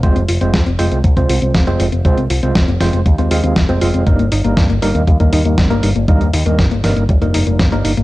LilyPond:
<<
  \new Staff \with { instrumentName = "Tine electric piano" } { \time 4/4 \key f \minor \tempo 4 = 119 <aes c' f' c''>16 r8 <aes c' f' c''>16 r8 <aes c' f' c''>16 r8 <aes c' f' c''>4 <aes c' f' c''>16 r8 | <aes c' f' c''>16 r8 <aes c' f' c''>16 r8 <aes c' f' c''>16 r8 <aes c' f' c''>16 <aes c' f' f''>8 r16 <aes c' f' c''>16 <aes c' f' f''>8 | <g, g bes ees' bes'>16 r8 <g, g bes ees' bes'>16 r8 <g, g bes ees' bes'>16 r8 <g, g bes ees' bes'>4 <g, g bes ees' bes'>16 r8 | <g, g bes ees' bes'>16 r8 <g, g bes ees' bes'>16 r8 <g, g bes ees' bes'>16 r8 <g, g bes ees' bes'>4 <g, g bes ees' bes'>16 r8 | }
  \new Staff \with { instrumentName = "Synth arpeggio sound" } { \time 4/4 \key f \minor aes16 c'16 f'16 c'16 aes16 c'16 f'16 c'16 aes16 c'16 f'16 c'16 aes16 c'16 f'16 c'16 | aes16 c'16 f'16 c'16 aes16 c'16 f'16 c'16 aes16 c'16 f'16 c'16 aes16 c'16 f'16 c'16 | g16 bes16 ees'16 bes16 g16 bes16 ees'16 bes16 g16 bes16 ees'16 bes16 g16 bes16 ees'16 bes16 | g16 bes16 ees'16 bes16 g16 bes16 ees'16 bes16 g16 bes16 ees'16 bes16 g16 bes16 ees'16 bes16 | }
  \new Staff \with { instrumentName = "Picked electric bass" } { \clef bass \time 4/4 \key f \minor f,,16 f,,16 f,,16 f,,16 f,16 f,,16 f,,16 c,16 c,16 c,16 c,16 c,16 f,,16 f,,16 f,,16 f,,16 | c,16 c,16 c,16 c,16 f,,16 f,,16 f,,16 f,,16 ees,16 ees,16 ees,16 ees,16 f,,16 f,,16 f,,16 f,,16 | g,,16 g,,16 g,,16 g,,16 g,16 g,,16 g,,16 ees,16 ees,16 ees,16 ees,16 ees,16 g,,16 g,,16 g,,16 g,,16 | ees,16 ees,16 ees,16 ees,16 g,,16 g,,16 g,,16 g,,16 f,,16 f,,16 f,,16 f,,16 g,,16 g,,16 g,,16 g,,16 | }
  \new DrumStaff \with { instrumentName = "Drums" } \drummode { \time 4/4 <hh bd>16 hh16 hho16 hh16 <hh bd sn>16 hh16 hho16 hh16 <hh bd>16 <hh bd>16 hho16 hh16 <hh bd sn>16 hh16 hho16 hh16 | <hh bd>16 hh16 hho16 hh16 <hh bd sn>16 hh16 <hho sn>16 hh16 <hh bd>16 hh16 hho16 hh16 <hh bd sn>16 hh16 hho16 hh16 | <hh bd>16 hh16 hho16 hh16 <hh bd sn>16 hh16 hho16 hh16 <hh bd>16 <hh bd>16 hho16 hh16 <hh bd sn>16 hh16 hho16 hh16 | <hh bd>16 hh16 hho16 hh16 <hh bd sn>16 hh16 <hho sn>16 hh16 <hh bd>16 hh16 hho16 hh16 <hh bd sn>16 hh16 hho16 hh16 | }
>>